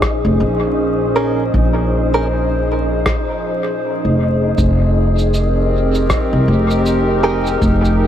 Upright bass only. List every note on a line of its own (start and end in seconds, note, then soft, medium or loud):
0.25 0.42 F1 medium
0.40 1.51 A#1 medium
1.54 3.03 A#1 medium
4.05 4.55 F1 medium
4.58 6.07 F1 medium
6.33 6.49 C2 medium
6.48 7.59 F1 medium
7.62 8.07 F1 medium